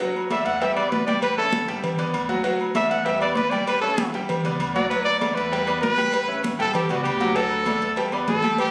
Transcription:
0.00 F#3 F#4 F#5, cowbell, high conga, low agogo
0.15 high conga, low agogo
0.30 A3 A4 D5 E5, cowbell, high conga, low agogo
0.45 E2 F#5, cowbell
0.61 G3 G4 E5 G5, cowbell, high conga, low agogo
0.75 B3 B4 D5, high conga, low agogo
0.90 A1 B4, cowbell, high conga, low timbale
1.07 G3 G4 D5 G5, high conga, low agogo
1.22 B4, cowbell, high conga, low agogo
1.37 C#4 A4 C#5 E5, high conga
1.53 cowbell, high conga, low agogo
1.68 G1 G3 G4 G5, cowbell
1.84 cowbell, high conga, low conga, low agogo
1.98 B3 B4 D5, cowbell, high conga, low conga, low agogo
2.13 D2, cowbell, high conga, low agogo
2.29 F#3 F#4 F#5, cowbell, high conga
2.44 F#3 F#4 F#5, cowbell, high conga, low agogo
2.60 high conga, low agogo
2.75 A3 A4 D5 E5, cowbell, high conga, low agogo
2.90 E2 F#5, cowbell
3.05 G3 G4 E5 G5, cowbell, high conga, low agogo
3.20 B3 B4 D5, high conga, low agogo
3.35 A1 B4, cowbell, high conga
3.50 G3 G4 D5 G5, high conga, low agogo
3.67 B4, cowbell, high conga, low agogo
3.81 C#4 A4 C#5 E5, high conga
3.98 cowbell, high conga, low agogo
4.13 G1 G3 G4 G5, cowbell
4.29 cowbell, high conga, low conga, low agogo
4.44 C#2 B3 B4 D5, cowbell, high conga, low conga, low agogo
4.59 D2, cowbell, high conga, low agogo
4.74 F#3 F#4 D5 F#5, cowbell, high conga
4.89 F#3 F#4 B4 F#5, cowbell, high conga, low agogo
5.05 D5, high conga, low agogo
5.19 A3 A4 D5, cowbell, high conga, low agogo
5.35 E2 B4, cowbell
5.52 G3 G4 G5, cowbell, high conga, low agogo
5.67 B3 B4 D5, high conga, low agogo
5.81 A1 B4, cowbell, high conga, low timbale
5.97 G3 G4 G5, high conga, low agogo
6.12 cowbell, high conga, low agogo
6.28 C#4 C#5 E5, high conga
6.43 cowbell, high conga, low agogo
6.59 G1 G3 G4 A4 G5, cowbell
6.74 G4, cowbell, high conga, low conga, low agogo
6.89 C#2 B3 F#4 B4 D5, cowbell, high conga, low agogo
7.04 D2 G4, cowbell, high conga, low agogo
7.20 F#3 F#4 F#5, cowbell, high conga
7.36 F#3 F#4 A4 F#5, cowbell, high conga, low agogo
7.51 high conga, low agogo
7.66 A3 A4 D5, cowbell, high conga, low agogo
7.82 E2, cowbell
7.96 G3 G4 G5, cowbell, high conga, low agogo
8.12 B3 B4 D5, high conga, low agogo
8.28 A1 A4, cowbell, high conga, low timbale
8.42 G3 G4 G5, high conga, low agogo
8.58 G4, cowbell, high conga, low agogo

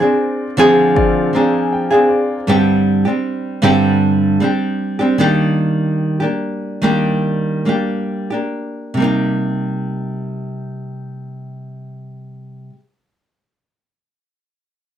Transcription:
Already playing: C4 F4 D5
0.00 C4 D4 G#4
0.57 D3 F3 C4 D4 G#4
0.95 C4 F4 D5, kick
1.33 F3 C4 D4 G#4 A#5
1.53 G#5
1.73 G5
1.90 C4 D4 G#4 F5
2.09 D5
2.47 G2 D3 G3 C4 D4 G4
3.05 G3 C4 D4 G4
3.62 G2 D3 G3 C4 D4 G4
4.40 G3 C4 D4 G4
4.99 G3 C4 D4 G4
5.18 D#3 G3 A#3 D4 G4
6.20 A#3 D4 G4
6.82 D#3 G3 A#3 D4 G4
7.65 G3 A#3 D4 G4
8.30 A#3 D4 G4
8.94 C3 G3
9.00 A#3 D#4 G4

